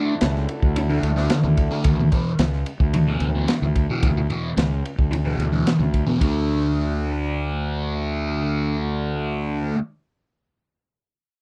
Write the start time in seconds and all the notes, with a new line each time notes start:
Already playing: D3 A3 D4 E4 F#4
0.21 C#2, muted distorted electric guitar stroke, snare, ride
0.36 snare
0.49 ride
0.62 D2, kick
0.76 muted distorted electric guitar stroke, ride
0.90 D3 A3 D4
1.03 D2, ride
1.17 D3 A3 D4, snare
1.30 snare, ride
1.44 D2, muted distorted electric guitar stroke
1.57 kick, ride
1.71 D3 A3 D4
1.84 D2, kick, ride
1.99 muted distorted electric guitar stroke
2.12 E2 B2 E3, kick, ride
2.39 C#2, muted distorted electric guitar stroke, snare, ride
2.53 snare
2.66 ride
2.80 D2, kick
2.94 muted distorted electric guitar stroke, ride
3.08 E2 B2 E3
3.20 D2, ride
3.35 E2 B2 E3
3.48 snare, ride
3.62 D2, muted distorted electric guitar stroke
3.75 kick, ride
3.90 E2 B2 E3
4.03 D2, kick, ride
4.17 muted distorted electric guitar stroke
4.30 E2 B2 E3, ride
4.57 C#2, muted distorted electric guitar stroke, snare, ride
4.85 ride
4.99 D2, kick
5.11 muted distorted electric guitar stroke, ride
5.25 E2 B2 E3
5.39 D2, ride
5.53 E2 B2 E3
5.67 snare, ride
5.79 D2, muted distorted electric guitar stroke
5.94 kick, ride
6.06 E2 B2 E3
6.20 D2 D3 A3, kick, ride
6.24 D4